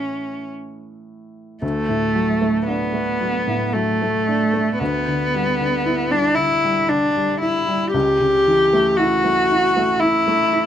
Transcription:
0.00 1.56 A2 soft
0.00 1.57 E3 soft
0.00 1.57 A3 soft
0.00 0.46 C#4 soft
0.00 1.58 E4 soft
1.62 4.76 D2 soft
1.62 2.65 A3 medium
1.89 2.32 A2 soft
2.15 2.58 F#3 soft
2.41 2.84 A3 soft
2.67 3.75 B3 medium
2.67 3.10 D4 soft
2.94 3.37 A3 soft
3.21 3.64 F#3 soft
3.47 3.90 A2 soft
3.73 4.17 F#3 soft
3.73 4.78 A3 medium
4.02 4.44 A3 soft
4.28 4.70 D4 soft
4.53 4.80 A3 soft
4.79 7.90 D2 soft
4.79 6.12 B3 medium
5.08 5.50 D3 soft
5.35 5.76 G3 soft
5.61 6.02 D3 soft
5.86 6.27 E4 soft
6.11 6.54 G3 soft
6.11 6.37 D4 medium
6.35 6.79 D3 soft
6.35 6.90 E4 medium
6.64 7.06 G3 soft
6.89 7.32 D3 soft
6.89 7.41 D4 medium
7.17 7.58 G3 soft
7.41 7.92 E4 medium
7.41 7.84 E4 soft
7.68 7.94 G3 soft
7.92 10.66 C#2 soft
7.92 8.99 G4 medium
8.20 8.62 C#3 soft
8.47 8.89 E3 soft
8.73 9.14 A3 soft
8.97 9.40 E4 soft
8.97 10.02 F#4 medium
9.24 9.65 A3 soft
9.51 9.91 E4 soft
9.77 10.17 A3 soft
10.00 10.66 E4 medium
10.00 10.42 E4 soft
10.28 10.66 A3 soft
10.53 10.66 E4 soft

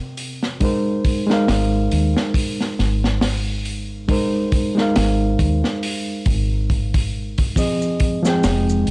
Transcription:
0.00 0.55 C3 medium
0.00 0.57 C4 medium
0.00 0.58 A#4 medium
0.00 0.59 G5 medium
0.17 open hi-hat medium
0.43 snare soft
0.60 1.23 G#3 medium
0.60 1.24 D#4 medium
0.60 1.25 A#4 medium
0.60 1.25 C5 medium
0.60 kick medium
0.60 open hi-hat medium
1.04 kick medium
1.04 open hi-hat medium
1.27 4.03 G#3 medium
1.27 4.04 D#4 medium
1.27 snare soft
1.31 4.05 A#4 medium
1.31 4.06 F5 medium
1.48 1.88 G#1 medium
1.48 snare loud
1.48 open hi-hat medium
1.91 2.14 D#2 medium
1.91 open hi-hat medium
2.17 snare medium
2.34 kick medium
2.34 open hi-hat medium
2.61 snare soft
2.79 4.49 G#1 medium
2.79 snare soft
2.79 open hi-hat medium
3.04 snare medium
3.21 snare loud
3.21 open hi-hat medium
3.65 open hi-hat medium
4.08 4.71 G#3 medium
4.08 4.72 D#4 medium
4.08 4.72 A#4 medium
4.08 4.73 C5 medium
4.08 kick medium
4.08 open hi-hat medium
4.52 kick medium
4.52 open hi-hat medium
4.75 7.51 G#3 medium
4.75 7.52 D#4 medium
4.75 snare soft
4.79 7.53 A#4 medium
4.79 7.54 F5 medium
4.96 5.36 G#1 medium
4.96 snare loud
4.96 open hi-hat medium
5.39 5.62 D#2 medium
5.39 kick medium
5.39 open hi-hat medium
5.64 snare soft
5.83 open hi-hat medium
6.26 7.53 G#1 medium
6.26 kick medium
6.26 open hi-hat medium
6.70 kick medium
6.70 open hi-hat soft
6.94 kick medium
6.94 open hi-hat medium
7.38 kick medium
7.38 open hi-hat medium
7.56 8.19 F3 medium
7.56 8.91 G#3 medium
7.56 8.19 C4 medium
7.56 8.91 F4 medium
7.56 8.20 G#4 medium
7.56 8.91 D#5 medium
7.56 8.20 D#5 medium
7.56 kick medium
7.56 open hi-hat medium
7.56 maracas medium
7.81 maracas soft
8.00 kick medium
8.00 open hi-hat medium
8.23 8.91 F3 medium
8.23 8.91 C4 medium
8.23 snare medium
8.23 maracas medium
8.27 8.91 G#4 medium
8.27 8.91 G5 medium
8.43 8.83 F1 medium
8.43 snare loud
8.43 open hi-hat medium
8.43 maracas medium
8.69 maracas soft
8.87 open hi-hat medium

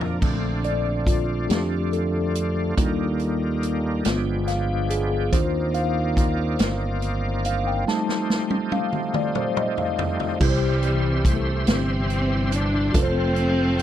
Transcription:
0.00 0.19 F2 medium
0.00 0.19 F3 medium
0.00 0.20 A#3 medium
0.00 0.18 D4 medium
0.00 0.20 D4 medium
0.00 0.18 F4 medium
0.00 0.20 F4 medium
0.00 0.19 A#4 medium
0.00 0.20 A#4 medium
0.00 floor tom medium
0.21 1.46 A#1 medium
0.21 2.75 D3 medium
0.21 0.78 A3 soft
0.21 2.75 A3 soft
0.21 2.75 C4 medium
0.21 0.79 C4 soft
0.21 2.75 D4 medium
0.21 0.79 D4 soft
0.21 4.01 F4 medium
0.21 kick medium
0.21 crash medium
0.64 0.84 D5 medium
0.64 closed hi-hat soft
1.07 1.51 F4 medium
1.07 kick medium
1.07 closed hi-hat medium
1.49 2.74 F2 medium
1.49 1.88 A3 soft
1.49 1.88 C4 soft
1.49 1.89 D4 soft
1.49 1.94 G4 medium
1.49 snare medium
1.49 closed hi-hat medium
1.93 3.16 A4 medium
1.93 closed hi-hat soft
2.35 closed hi-hat medium
2.77 4.01 D#2 medium
2.77 4.04 D#3 medium
2.77 3.34 G3 medium
2.77 4.04 G3 medium
2.77 4.04 A#3 medium
2.77 5.30 D4 medium
2.77 3.34 D4 soft
2.77 3.34 F4 medium
2.77 kick medium
2.77 closed hi-hat medium
3.19 closed hi-hat soft
3.63 closed hi-hat medium
4.05 5.29 G1 medium
4.05 5.31 F3 medium
4.05 5.28 G#3 soft
4.05 5.32 G#3 medium
4.05 5.29 B3 soft
4.05 5.31 B3 soft
4.05 5.29 F4 medium
4.05 5.31 G5 medium
4.05 snare medium
4.05 closed hi-hat medium
4.48 4.91 F5 medium
4.48 snare soft
4.48 closed hi-hat soft
4.90 5.34 G#4 medium
4.90 closed hi-hat medium
5.32 6.56 D#2 loud
5.32 7.85 D#3 medium
5.32 6.55 A#3 medium
5.32 7.85 A#3 soft
5.32 7.85 C4 medium
5.32 6.56 D4 medium
5.32 6.56 D#4 soft
5.32 6.56 F4 medium
5.32 7.85 F4 medium
5.32 5.72 C5 medium
5.32 7.85 D5 medium
5.32 kick loud
5.32 closed hi-hat medium
5.74 6.98 F5 medium
5.74 closed hi-hat soft
6.17 kick medium
6.17 closed hi-hat medium
6.59 7.83 G1 medium
6.59 snare medium
6.59 closed hi-hat medium
7.02 closed hi-hat soft
7.45 7.67 F5 medium
7.45 closed hi-hat medium
7.67 7.88 G5 medium
7.86 10.39 F3 medium
7.86 8.43 G3 medium
7.86 10.38 A3 medium
7.86 8.44 A3 medium
7.86 10.39 C4 medium
7.86 10.39 D#4 medium
7.86 8.44 D#4 medium
7.86 10.39 G4 medium
7.86 8.75 A5 loud
7.86 snare medium
8.09 snare soft
8.30 snare medium
8.50 high tom medium
8.72 9.16 F5 medium
8.72 high tom medium
8.93 mid tom medium
9.14 9.34 D5 medium
9.14 mid tom medium
9.35 9.55 C5 medium
9.35 mid tom medium
9.57 9.79 D#5 medium
9.57 mid tom medium
9.78 10.37 F5 medium
9.78 floor tom medium
9.99 floor tom loud
10.20 floor tom medium
10.40 11.64 C2 medium
10.40 11.64 C3 medium
10.40 11.65 C3 medium
10.40 11.65 E3 medium
10.40 11.23 G3 medium
10.40 12.90 E4 medium
10.40 12.92 G4 medium
10.40 12.91 G4 medium
10.40 10.49 B4 medium
10.40 13.82 C5 medium
10.40 12.92 E5 medium
10.40 13.82 C6 medium
10.40 kick loud
10.40 crash loud
10.50 12.95 C5 medium
10.83 closed hi-hat medium
11.25 11.69 A3 medium
11.25 kick medium
11.25 closed hi-hat medium
11.67 12.90 G1 medium
11.67 12.92 E3 medium
11.67 12.92 G3 medium
11.67 12.53 C4 medium
11.67 snare loud
11.67 closed hi-hat medium
12.10 closed hi-hat soft
12.52 12.96 D4 medium
12.52 closed hi-hat medium
12.93 13.82 F1 loud
12.93 13.82 F4 medium
12.93 13.82 A4 medium
12.93 13.02 B4 medium
12.93 13.82 F5 medium
12.93 kick loud
12.93 closed hi-hat medium
12.97 13.82 F3 medium
12.97 13.82 A3 medium
12.97 13.82 C4 loud
13.03 13.82 C5 medium
13.36 closed hi-hat soft
13.79 closed hi-hat medium

